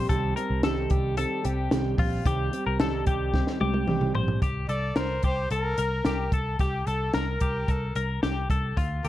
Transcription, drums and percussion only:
0.10 kick, closed hi-hat
0.37 closed hi-hat
0.63 snare, closed hi-hat
0.90 kick, closed hi-hat
1.17 closed hi-hat
1.45 closed hi-hat
1.71 snare, closed hi-hat
1.98 kick, open hi-hat
2.26 kick, closed hi-hat
2.53 closed hi-hat
2.80 snare, closed hi-hat
3.06 kick, closed hi-hat
3.34 kick, snare
3.47 snare
3.61 high tom
3.74 high tom
3.87 mid tom
4.01 mid tom
4.15 floor tom
4.28 floor tom
4.42 kick, closed hi-hat
4.69 closed hi-hat
4.96 snare, closed hi-hat
5.23 kick, closed hi-hat
5.50 closed hi-hat
5.78 closed hi-hat
6.05 snare, closed hi-hat
6.32 kick, closed hi-hat
6.59 kick, closed hi-hat
6.87 closed hi-hat
7.14 snare, closed hi-hat
7.40 kick, closed hi-hat
7.68 kick, closed hi-hat
7.95 closed hi-hat
8.23 snare, closed hi-hat
8.50 kick, closed hi-hat
8.77 kick, closed hi-hat
9.04 closed hi-hat

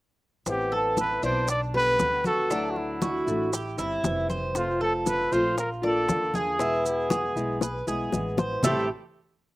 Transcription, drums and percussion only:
0.46 high bongo, high conga, maracas
0.72 high conga
0.97 high bongo, high conga, maracas
1.23 maracas
1.48 high bongo, high conga, maracas
1.74 high conga
1.99 high bongo, low bongo, high conga, maracas
2.24 high conga, maracas
2.51 high bongo, high conga, maracas
2.76 high bongo, high conga
3.02 high bongo, high conga, maracas
3.27 high conga, maracas
3.52 high bongo, high conga, maracas
3.78 high bongo, high conga, maracas
4.04 high bongo, low bongo, high conga, maracas
4.30 high bongo, high conga, maracas
4.55 high bongo, high conga, maracas
4.81 high conga
5.06 high bongo, high conga, maracas
5.32 maracas
5.58 high bongo, high conga, maracas
5.84 high conga
6.09 high bongo, low bongo, high conga, maracas
6.34 high conga, maracas
6.59 high bongo, high conga, maracas
6.85 high bongo, high conga, maracas
7.10 high bongo, high conga, maracas
7.36 high conga, maracas
7.61 high bongo, high conga, maracas
7.87 high conga, maracas
8.12 low bongo, high conga, maracas
8.38 low bongo, high conga, maracas
8.63 low bongo, low conga, maracas

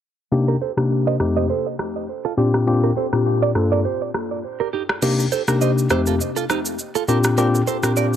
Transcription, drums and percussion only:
0.78 cross-stick
1.20 cross-stick
1.79 cross-stick
2.54 cross-stick
3.13 cross-stick
3.55 cross-stick
4.14 cross-stick
4.89 cross-stick
5.02 crash, shaker
5.20 shaker
5.32 shaker
5.48 cross-stick, shaker
5.61 shaker
5.78 shaker
5.90 cross-stick, shaker
6.06 shaker
6.21 shaker
6.37 shaker
6.50 cross-stick, shaker
6.65 shaker
6.79 shaker
6.95 shaker
7.08 shaker
7.24 cross-stick, shaker
7.38 shaker
7.55 shaker
7.67 shaker
7.83 cross-stick, shaker
7.97 shaker

